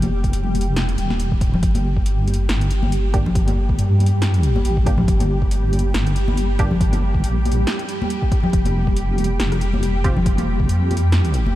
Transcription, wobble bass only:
0.00 0.32 F1 loud
0.33 0.96 F1 medium
0.98 1.43 D#1 loud
1.43 1.61 D1 loud
1.63 2.48 G1 loud
2.49 3.77 G1 medium
3.79 4.63 G2 medium
4.65 5.07 A1 medium
5.08 5.93 G1 loud
5.94 7.22 G1 loud
7.24 7.65 A#1 loud
8.53 9.38 F1 loud
9.40 10.68 F1 loud
10.69 11.54 F2 medium

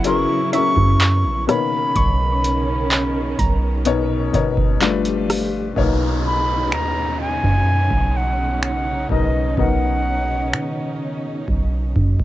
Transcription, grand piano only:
0.00 0.05 F#3 medium
0.00 0.05 C#4 medium
0.00 0.06 E4 medium
0.00 0.06 G#4 medium
0.00 1.50 B4 loud
0.05 0.38 F#3 medium
0.05 0.38 C#4 medium
0.05 0.39 E4 medium
0.05 0.39 G#4 medium
0.05 0.39 A#4 medium
0.53 1.48 F#3 medium
0.53 1.48 C#4 medium
0.53 1.48 E4 medium
0.53 1.49 G#4 medium
0.53 1.49 A#4 medium
1.47 3.00 B2 medium
1.47 3.01 D#3 medium
1.47 3.01 A#3 medium
1.47 3.00 B3 medium
1.47 3.01 C#5 medium
3.85 4.19 B2 medium
3.85 4.19 B3 medium
3.85 4.19 D#4 medium
3.85 4.20 A#4 medium
3.85 4.20 C#5 loud
4.33 4.81 B2 medium
4.33 4.81 B3 medium
4.33 4.82 D#4 medium
4.33 4.82 A#4 medium
4.33 4.82 C#5 medium
4.81 5.57 G3 medium
4.81 5.58 A3 medium
4.81 5.57 D4 medium
4.81 5.58 F4 medium
4.81 5.58 B4 loud
5.76 7.09 B2 medium
5.76 7.10 A#3 medium
5.76 7.09 B3 medium
5.76 7.10 D#4 medium
5.76 7.10 C#5 medium
9.10 9.43 B2 medium
9.10 9.43 B3 medium
9.10 9.43 D#4 medium
9.10 9.44 A#4 medium
9.10 9.44 D#5 medium
9.57 10.90 B2 medium
9.57 10.91 B3 medium
9.57 10.91 D#4 medium
9.57 10.91 A#4 medium
9.57 10.91 D#5 medium

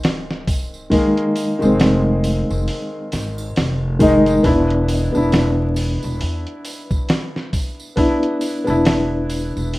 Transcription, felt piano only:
0.00 0.86 D#3 medium
0.00 0.87 G#3 medium
0.00 0.88 C4 medium
0.90 1.55 D#3 medium
0.90 1.55 G#3 medium
0.90 1.56 A#3 loud
1.59 3.06 D#3 medium
1.59 3.08 G#3 medium
1.64 3.09 C4 medium
3.99 4.39 D#3 medium
3.99 4.40 G#3 medium
3.99 4.41 D#4 loud
4.43 5.07 B3 medium
4.43 5.08 D4 medium
4.43 5.09 E4 medium
5.12 7.92 B3 medium
5.12 7.93 D4 medium
5.17 7.94 E4 medium
7.96 8.60 B3 medium
7.96 8.61 D4 medium
7.96 8.62 E4 medium
8.64 9.79 B3 medium
8.64 9.79 D4 medium
8.70 9.79 E4 medium

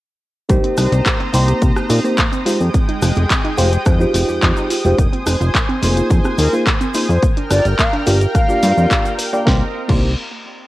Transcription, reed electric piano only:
0.49 1.28 A#3 loud
0.49 1.28 C4 medium
0.49 1.28 D#4 medium
0.49 1.29 G4 loud
0.49 1.29 C5 loud
1.32 2.00 A#3 medium
1.32 2.00 C4 medium
1.32 2.01 D#4 medium
1.32 2.01 G4 medium
1.32 2.01 C5 loud
2.04 2.15 A#3 medium
2.04 2.15 C4 medium
2.04 2.15 D#4 medium
2.04 2.15 G4 medium
2.04 2.16 C5 medium
2.45 2.57 G#3 loud
2.45 2.57 D#4 medium
2.45 2.58 F4 medium
2.45 2.58 G4 medium
2.45 2.58 C5 loud
3.57 3.69 G#3 loud
3.57 3.70 D#4 medium
3.57 3.70 F4 medium
3.57 3.70 G4 medium
3.57 3.70 C5 loud
3.99 4.81 G#3 medium
3.99 4.81 D#4 medium
3.99 4.81 F4 medium
3.99 4.81 G4 medium
3.99 4.82 C5 loud
4.85 4.96 G#3 medium
4.85 4.96 D#4 medium
4.85 4.96 F4 medium
4.85 4.96 G4 medium
4.85 4.96 C5 medium
5.82 6.49 A#3 loud
5.82 6.49 D#4 medium
5.82 6.50 F4 medium
5.82 6.50 G#4 medium
5.82 6.50 C5 loud
6.53 6.64 A#3 medium
6.53 6.64 D#4 medium
6.53 6.64 F4 medium
6.53 6.64 G#4 medium
6.53 6.64 C5 medium
6.94 7.06 A#3 loud
6.94 7.06 D#4 medium
6.94 7.06 F4 medium
6.94 7.07 G#4 medium
6.94 7.07 C5 loud
8.06 8.18 A#3 loud
8.06 8.18 D4 medium
8.06 8.18 F4 medium
8.06 8.18 G4 medium
8.06 8.19 D5 loud
8.48 9.29 A#3 medium
8.48 9.30 D4 medium
8.48 9.30 F4 medium
8.48 9.30 G4 medium
8.48 9.30 D5 loud
9.33 9.44 A#3 medium
9.33 9.44 D4 medium
9.33 9.44 F4 medium
9.33 9.44 G4 medium
9.33 9.44 D5 medium
9.45 9.62 A#3 medium
9.45 9.62 C4 medium
9.45 9.63 D#4 medium
9.45 9.63 G4 medium
9.45 9.64 C5 loud
9.88 10.09 A#3 medium
9.88 10.10 C4 medium
9.88 10.10 D#4 medium
9.88 10.10 G4 medium
9.88 10.11 C5 medium

